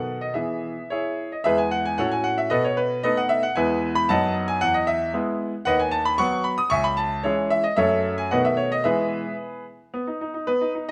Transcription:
0.00 0.34 B2 medium
0.00 0.31 D#3 soft
0.00 0.32 B3 soft
0.00 0.32 A4 soft
0.00 0.17 F#5 medium
0.21 0.35 D#5 medium
0.34 0.74 E3 soft
0.34 0.80 B3 soft
0.34 0.80 G#4 soft
0.34 1.18 E5 medium
0.90 1.30 E4 soft
0.90 1.30 G#4 soft
0.90 1.32 C#5 medium
1.32 1.46 D#5 soft
1.44 1.97 E2 medium
1.44 1.95 G#3 soft
1.44 1.95 B3 soft
1.44 1.58 G#4 medium
1.44 1.58 B4 medium
1.44 1.58 E5 medium
1.58 1.72 G#5 medium
1.71 1.85 F#5 medium
1.85 1.99 G#5 medium
1.98 2.50 A2 medium
1.98 2.47 A3 soft
1.98 2.48 C#4 soft
1.98 2.48 F#4 soft
1.98 2.11 A4 medium
1.98 2.11 C#5 medium
1.98 2.12 F#5 medium
2.12 2.25 G#5 medium
2.24 2.38 F#5 medium
2.38 2.51 E5 medium
2.50 3.02 B2 medium
2.50 2.64 A4 medium
2.50 2.64 B4 medium
2.50 2.64 D#5 medium
2.64 2.78 C#5 medium
2.77 3.01 B4 medium
3.03 3.42 A3 soft
3.03 3.43 B3 soft
3.03 3.43 D#4 medium
3.03 3.17 A4 medium
3.03 3.17 B4 medium
3.03 3.17 D#5 medium
3.17 3.31 F#5 medium
3.29 3.43 E5 medium
3.43 3.57 F#5 medium
3.56 4.08 E2 medium
3.56 4.06 G#3 soft
3.56 4.06 B3 soft
3.56 4.06 E4 soft
3.56 3.94 B4 medium
3.56 3.94 E5 medium
3.56 3.96 G#5 medium
3.95 4.09 B5 medium
4.09 4.61 F#2 medium
4.09 4.58 F#3 soft
4.09 4.58 B3 soft
4.09 4.59 D#4 soft
4.09 4.46 D#5 medium
4.09 4.46 F#5 medium
4.09 4.33 A5 medium
4.48 4.62 G#5 medium
4.61 5.12 E2 medium
4.61 4.75 F#5 loud
4.74 4.88 D#5 medium
4.87 5.13 E5 medium
5.13 5.51 G#3 medium
5.13 5.52 B3 soft
5.13 5.52 E4 medium
5.65 6.17 D#2 medium
5.65 5.79 B4 medium
5.65 5.79 D#5 medium
5.65 5.79 F#5 medium
5.80 5.93 G#5 medium
5.91 6.05 A5 medium
6.05 6.19 B5 medium
6.18 6.57 F#3 medium
6.18 6.57 B3 medium
6.18 6.43 F#5 medium
6.18 6.45 C#6 loud
6.44 6.58 B5 medium
6.58 6.71 D#6 medium
6.70 7.22 C#2 medium
6.70 6.83 E5 medium
6.70 6.83 G#5 medium
6.70 6.84 C#6 loud
6.84 6.97 B5 medium
6.97 7.21 A5 medium
7.23 7.63 E3 soft
7.23 7.63 G#3 soft
7.23 7.63 C#4 medium
7.23 7.49 E4 medium
7.23 7.49 G#4 medium
7.23 7.48 C#5 medium
7.50 7.64 E5 medium
7.64 7.77 D#5 medium
7.76 8.30 F#2 medium
7.76 8.27 F#3 soft
7.76 8.28 A3 soft
7.76 8.28 C#4 soft
7.76 8.15 A4 medium
7.76 8.15 C#5 medium
7.76 8.17 E5 medium
8.18 8.31 G#5 medium
8.31 8.84 B2 medium
8.31 8.82 D#3 soft
8.31 8.82 A3 soft
8.31 8.83 B3 soft
8.31 8.44 B4 medium
8.31 8.44 D#5 medium
8.31 8.45 F#5 medium
8.45 8.58 E5 medium
8.57 8.71 C#5 medium
8.72 8.86 D#5 medium
8.84 9.23 E3 soft
8.84 9.29 G#3 soft
8.84 9.29 B3 soft
8.84 9.63 G#4 medium
8.84 9.63 B4 medium
8.84 9.33 E5 medium
9.94 10.07 B3 medium
10.07 10.20 D#4 soft
10.21 10.33 D#4 soft
10.34 10.48 D#4 soft
10.47 10.60 B3 medium
10.47 10.71 B4 medium
10.61 10.74 D#4 soft
10.75 10.87 D#4 soft

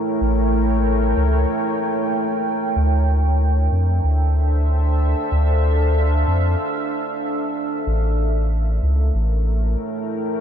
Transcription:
0.00 2.77 A3 medium
0.00 2.77 E4 medium
0.00 2.77 A#4 medium
0.00 2.76 C#5 medium
0.00 4.83 G5 medium
0.21 1.14 A1 loud
1.17 1.45 C#2 loud
2.76 3.69 D2 loud
2.76 7.87 D4 medium
2.99 7.87 A4 medium
3.23 9.71 E5 medium
3.51 7.87 C5 medium
3.72 4.01 F2 loud
4.04 5.15 D2 medium
4.89 7.87 F5 medium
5.31 6.25 D2 loud
6.27 6.56 F2 loud
7.86 8.80 A1 loud
7.86 10.40 A3 medium
8.19 10.40 A#4 medium
8.36 10.40 E4 medium
8.65 10.40 C#5 loud
8.83 9.11 C#2 loud
9.14 9.76 A1 loud
9.33 10.40 G5 loud

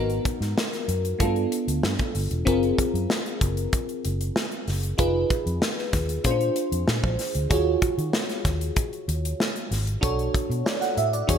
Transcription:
0.00 0.18 G#1 medium
0.00 1.20 B3 medium
0.00 1.17 D#4 medium
0.00 1.18 F#4 medium
0.00 1.18 A#4 medium
0.10 closed hi-hat soft
0.25 kick medium
0.25 closed hi-hat medium
0.41 0.53 G#2 medium
0.41 snare soft
0.41 closed hi-hat soft
0.58 snare loud
0.73 snare soft
0.73 closed hi-hat soft
0.88 1.13 F#2 medium
0.88 closed hi-hat medium
1.05 closed hi-hat soft
1.19 1.45 G2 medium
1.19 1.26 A3 medium
1.19 2.43 D4 medium
1.19 2.44 F4 medium
1.19 2.44 A4 medium
1.19 kick medium
1.19 closed hi-hat medium
1.25 2.46 B3 medium
1.36 closed hi-hat soft
1.52 closed hi-hat medium
1.68 1.80 D2 medium
1.68 closed hi-hat medium
1.83 1.96 G2 medium
1.83 snare medium
1.99 kick medium
1.99 closed hi-hat soft
2.15 2.27 G1 medium
2.15 open hi-hat medium
2.31 2.43 E1 loud
2.31 closed hi-hat medium
2.45 2.71 F#1 medium
2.45 4.94 C4 medium
2.45 4.94 F4 medium
2.45 4.95 G#4 medium
2.45 4.95 A#4 medium
2.45 kick loud
2.45 closed hi-hat medium
2.63 closed hi-hat soft
2.78 kick medium
2.78 closed hi-hat medium
2.94 3.06 F#2 medium
2.94 closed hi-hat soft
3.10 snare loud
3.26 closed hi-hat soft
3.41 3.66 F#1 medium
3.41 kick loud
3.41 closed hi-hat medium
3.57 closed hi-hat soft
3.73 kick medium
3.73 closed hi-hat medium
3.89 closed hi-hat soft
4.05 4.29 F#1 medium
4.05 closed hi-hat medium
4.21 closed hi-hat medium
4.36 snare loud
4.52 closed hi-hat soft
4.68 4.92 F#1 medium
4.68 snare soft
4.68 open hi-hat medium
4.83 closed hi-hat soft
4.98 5.23 F1 medium
4.98 6.22 D#4 medium
4.98 6.22 F4 medium
4.98 6.22 G#4 medium
4.98 6.23 B4 medium
4.98 kick loud
4.98 closed hi-hat medium
5.30 kick medium
5.30 closed hi-hat medium
5.46 5.58 F2 medium
5.46 closed hi-hat soft
5.62 snare loud
5.78 snare soft
5.93 6.17 D#2 medium
5.93 kick medium
5.93 snare soft
5.93 closed hi-hat medium
6.09 closed hi-hat soft
6.24 6.49 A#2 medium
6.24 6.31 C#4 medium
6.24 7.48 F4 medium
6.24 7.49 G#4 medium
6.24 7.49 C5 medium
6.24 kick medium
6.24 closed hi-hat medium
6.30 7.51 D4 medium
6.41 closed hi-hat soft
6.56 closed hi-hat medium
6.72 6.84 F2 medium
6.72 closed hi-hat medium
6.88 7.00 A#2 medium
6.88 snare medium
7.04 7.16 A#1 medium
7.04 kick medium
7.19 snare soft
7.19 open hi-hat medium
7.35 7.47 D2 medium
7.35 closed hi-hat soft
7.50 7.75 D#2 loud
7.50 9.98 F4 medium
7.50 9.99 F#4 medium
7.50 9.99 G#4 medium
7.50 10.00 C#5 medium
7.50 kick loud
7.50 closed hi-hat medium
7.82 kick loud
7.82 closed hi-hat medium
7.98 8.10 D#3 medium
7.98 closed hi-hat soft
8.13 snare loud
8.29 snare soft
8.29 closed hi-hat soft
8.45 8.69 D#2 medium
8.45 kick medium
8.45 snare soft
8.45 closed hi-hat medium
8.61 closed hi-hat soft
8.76 kick loud
8.76 closed hi-hat medium
8.93 closed hi-hat soft
9.08 9.32 D#2 medium
9.08 closed hi-hat medium
9.25 closed hi-hat medium
9.40 snare medium
9.56 closed hi-hat soft
9.71 9.95 G#1 medium
9.71 snare soft
9.71 open hi-hat medium
9.87 closed hi-hat soft
10.01 10.27 B1 medium
10.01 11.25 D4 medium
10.01 11.26 F#4 medium
10.01 11.26 A4 medium
10.01 10.65 C#5 medium
10.01 kick loud
10.01 closed hi-hat medium
10.19 closed hi-hat soft
10.34 kick loud
10.34 closed hi-hat medium
10.50 10.62 B2 loud
10.50 closed hi-hat soft
10.66 10.81 D5 medium
10.66 snare loud
10.81 10.96 F#5 medium
10.81 snare soft
10.81 closed hi-hat soft
10.97 11.22 A2 medium
10.97 11.12 E5 medium
10.97 closed hi-hat medium
11.13 11.38 D5 medium
11.13 closed hi-hat soft
11.27 11.38 E2 medium
11.27 11.38 D4 medium
11.27 11.38 F#4 medium
11.27 11.38 G#4 medium
11.27 11.38 C#5 medium
11.27 kick medium
11.27 closed hi-hat loud

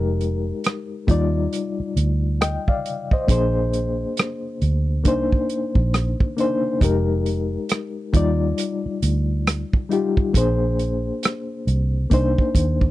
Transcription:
0.00 0.51 F1 medium
0.00 1.07 G#3 medium
0.00 1.07 D#4 medium
0.00 1.09 G4 medium
0.00 1.09 A#4 medium
0.21 closed hi-hat medium
0.64 cross-stick loud
0.64 closed hi-hat medium
1.07 1.46 D#2 medium
1.07 2.64 G3 medium
1.07 2.64 D#4 medium
1.07 2.65 F4 medium
1.07 2.42 D5 medium
1.07 kick medium
1.07 closed hi-hat medium
1.53 closed hi-hat medium
1.80 muted fingered electric bass stroke soft
1.96 2.57 D2 medium
1.96 closed hi-hat medium
2.41 2.67 D#5 soft
2.41 2.66 G5 medium
2.41 cross-stick loud
2.41 closed hi-hat medium
2.68 3.10 D5 soft
2.68 3.10 F5 medium
2.68 kick medium
2.86 closed hi-hat medium
3.11 3.30 C5 soft
3.11 3.54 D#5 medium
3.11 kick medium
3.27 4.04 A#1 medium
3.27 4.84 A#3 medium
3.27 4.85 D4 medium
3.27 4.85 G#4 medium
3.27 kick medium
3.27 closed hi-hat medium
3.32 4.86 C5 medium
3.73 closed hi-hat medium
4.17 cross-stick loud
4.17 closed hi-hat medium
4.62 5.06 D2 medium
4.62 closed hi-hat medium
5.04 5.43 C2 medium
5.04 6.22 A#3 medium
5.04 6.23 D4 medium
5.04 6.24 D#4 medium
5.04 6.24 C5 medium
5.04 kick medium
5.04 closed hi-hat medium
5.32 kick medium
5.50 closed hi-hat medium
5.75 6.13 A#1 medium
5.75 kick medium
5.94 cross-stick loud
5.94 closed hi-hat medium
6.20 kick medium
6.37 6.76 A#3 medium
6.37 6.77 D4 medium
6.37 6.78 D#4 medium
6.37 6.78 C5 medium
6.37 closed hi-hat medium
6.80 7.57 F1 medium
6.80 8.13 G#3 medium
6.80 8.13 D#4 medium
6.80 8.15 G4 medium
6.80 kick medium
6.80 closed hi-hat medium
6.84 8.15 A#4 medium
7.26 closed hi-hat medium
7.69 cross-stick loud
7.69 closed hi-hat medium
8.13 8.52 D#2 medium
8.13 9.69 G3 medium
8.13 9.70 D#4 medium
8.13 9.71 F4 medium
8.13 9.71 D5 medium
8.13 kick medium
8.13 closed hi-hat medium
8.58 closed hi-hat medium
8.86 muted fingered electric bass stroke soft
9.02 9.63 D2 medium
9.02 closed hi-hat medium
9.47 cross-stick loud
9.47 closed hi-hat medium
9.73 kick medium
9.89 10.29 G3 medium
9.89 10.30 D#4 medium
9.89 10.30 F4 medium
9.89 10.31 G4 medium
9.89 closed hi-hat medium
10.17 kick medium
10.33 11.10 A#1 medium
10.33 11.90 A#3 medium
10.33 11.91 D4 medium
10.33 11.91 G#4 medium
10.33 kick medium
10.33 closed hi-hat medium
10.37 11.92 C5 medium
10.79 closed hi-hat medium
11.23 cross-stick loud
11.23 closed hi-hat medium
11.67 12.05 C2 medium
11.67 closed hi-hat soft
12.10 12.34 C2 medium
12.10 12.91 A#3 medium
12.10 12.91 D4 medium
12.10 12.91 D#4 medium
12.10 12.91 C5 medium
12.10 kick medium
12.10 closed hi-hat medium
12.38 kick medium
12.55 12.91 D#2 medium
12.55 kick medium
12.55 closed hi-hat medium
12.81 kick medium

